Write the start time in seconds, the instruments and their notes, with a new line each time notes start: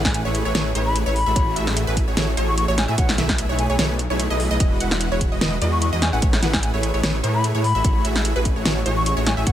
Already playing: detuned saw bass A1, supersaw synth A3 E4 G#4 B4 F#5, synth pluck F#5
0.05 flute G#5, kick, snare
0.14 flute G#5, closed hi-hat
0.25 detuned saw bass A1, supersaw synth A3 E4 G#4 B4 C#5, synth pluck C#5
0.35 closed hi-hat
0.45 detuned saw bass A1, supersaw synth A3 E4 G#4 B4 C#5, synth pluck C#5
0.55 detuned saw bass A1, supersaw synth A3 E4 G#4 B4 C#5, synth pluck C#5, snare, closed hi-hat
0.75 detuned saw bass A1, supersaw synth A3 E4 G#4 B4 C#5, synth pluck C#5, closed hi-hat
0.86 flute B5
0.96 closed hi-hat
1.06 detuned saw bass A1, supersaw synth A3 E4 G#4 B4 C#5, synth pluck C#5
1.16 flute B5, open hi-hat
1.26 detuned saw bass A1, supersaw synth A3 E4 F#4 G#4 E5, synth pluck E5
1.36 detuned saw bass A1, supersaw synth A3 E4 F#4 G#4 C#5, synth pluck C#5, kick, closed hi-hat
1.56 detuned saw bass A1, supersaw synth A3 E4 F#4 G#4 E5, synth pluck E5, closed hi-hat
1.67 snare
1.77 closed hi-hat
1.87 detuned saw bass A1, supersaw synth A3 E4 F#4 G#4 B4, synth pluck B4
1.97 kick, closed hi-hat
2.08 detuned saw bass A1, supersaw synth A3 E4 F#4 G#4 C#5, synth pluck C#5
2.17 detuned saw bass A1, supersaw synth A3 E4 F#4 G#4 C#5, synth pluck C#5, snare, closed hi-hat
2.37 detuned saw bass A1, supersaw synth A3 E4 F#4 G#4 C#5, synth pluck C#5, closed hi-hat
2.48 flute C#6
2.58 flute C#6, closed hi-hat
2.68 detuned saw bass A1, supersaw synth A3 E4 F#4 G#4 C#5, synth pluck C#5
2.78 flute G#5, snare, closed hi-hat
2.88 detuned saw bass A2, supersaw synth A3 E4 F#4 G#4 E5, synth pluck E5, flute G#5
2.98 detuned saw bass B1, supersaw synth A3 E4 G#4 B4 C#5, synth pluck C#5, flute F#5, kick, closed hi-hat
3.09 snare
3.18 detuned saw bass B1, supersaw synth A3 E4 G#4 B4 E5, synth pluck E5, snare, closed hi-hat
3.29 kick, snare
3.38 closed hi-hat
3.49 detuned saw bass B1, supersaw synth A3 E4 G#4 B4 C#5, synth pluck C#5
3.59 flute G#5, closed hi-hat
3.70 detuned saw bass B1, supersaw synth A3 E4 G#4 B4 C#5, synth pluck C#5, flute G#5
3.79 detuned saw bass B1, supersaw synth A3 E4 G#4 B4 C#5, synth pluck C#5, snare, closed hi-hat
3.99 closed hi-hat
4.10 detuned saw bass B1, supersaw synth A3 E4 G#4 B4 C#5, synth pluck C#5
4.20 closed hi-hat
4.30 detuned saw bass B1, supersaw synth A3 E4 G#4 B4 D#5, synth pluck D#5
4.40 open hi-hat
4.51 detuned saw bass B1, supersaw synth A3 E4 G#4 B4 D#5, synth pluck D#5
4.60 supersaw synth G#3 E4 F#4 D#5, synth pluck D#5, kick, closed hi-hat
4.80 detuned saw bass E1, supersaw synth G#3 E4 F#4 B4 F#5, synth pluck F#5, closed hi-hat
4.91 snare
5.01 closed hi-hat
5.12 detuned saw bass E1, supersaw synth G#3 E4 F#4 B4 C#5, synth pluck C#5
5.21 kick, closed hi-hat
5.32 detuned saw bass E1, supersaw synth G#3 E4 F#4 B4 D#5, synth pluck D#5
5.41 detuned saw bass E1, supersaw synth G#3 E4 F#4 B4 D#5, synth pluck D#5, snare, closed hi-hat
5.61 detuned saw bass E2, supersaw synth G#3 E4 F#4 B4 D#5, synth pluck D#5, closed hi-hat
5.72 flute C#6
5.82 flute C#6, closed hi-hat
5.93 detuned saw bass E2, supersaw synth G#3 E4 F#4 B4 D#5, synth pluck D#5
6.02 flute G#5, snare, closed hi-hat
6.13 detuned saw bass A1, supersaw synth A3 E4 G#4 B4 F#5, synth pluck F#5, flute G#5
6.22 detuned saw bass A1, supersaw synth A3 E4 G#4 B4 C#5, synth pluck C#5, kick, closed hi-hat
6.33 snare
6.42 detuned saw bass A1, supersaw synth A3 E4 G#4 B4 F#5, synth pluck F#5, snare, closed hi-hat
6.53 flute G#5, kick, snare
6.63 flute G#5, closed hi-hat
6.74 detuned saw bass A1, supersaw synth A3 E4 G#4 B4 C#5, synth pluck C#5
6.83 closed hi-hat
6.94 detuned saw bass A1, supersaw synth A3 E4 G#4 B4 C#5, synth pluck C#5
7.03 detuned saw bass A1, supersaw synth A3 E4 G#4 B4 C#5, synth pluck C#5, snare, closed hi-hat
7.23 detuned saw bass A2, supersaw synth A3 E4 G#4 B4 C#5, synth pluck C#5, closed hi-hat
7.34 flute B5
7.44 closed hi-hat
7.55 detuned saw bass A2, supersaw synth A3 E4 G#4 B4 C#5, synth pluck C#5
7.64 flute B5, open hi-hat
7.75 detuned saw bass A1, supersaw synth A3 E4 F#4 G#4 E5, synth pluck E5
7.84 detuned saw bass A1, supersaw synth A3 E4 F#4 G#4 C#5, synth pluck C#5, kick, closed hi-hat
8.05 detuned saw bass A1, supersaw synth A3 E4 F#4 G#4 E5, synth pluck E5, closed hi-hat
8.16 snare
8.25 closed hi-hat
8.35 detuned saw bass A1, supersaw synth A3 E4 F#4 G#4 B4, synth pluck B4
8.45 kick, closed hi-hat
8.56 detuned saw bass A1, supersaw synth A3 E4 F#4 G#4 C#5, synth pluck C#5
8.65 detuned saw bass A1, supersaw synth A3 E4 F#4 G#4 C#5, synth pluck C#5, snare, closed hi-hat
8.86 detuned saw bass A1, supersaw synth A3 E4 F#4 G#4 C#5, synth pluck C#5, closed hi-hat
8.97 flute C#6
9.06 flute C#6, closed hi-hat
9.17 detuned saw bass A1, supersaw synth A3 E4 F#4 G#4 C#5, synth pluck C#5
9.26 flute G#5, snare, closed hi-hat
9.37 detuned saw bass A1, supersaw synth A3 E4 F#4 G#4 E5, synth pluck E5, flute G#5
9.47 detuned saw bass B1, supersaw synth A3 E4 G#4 B4 C#5, synth pluck C#5, flute F#5, kick, closed hi-hat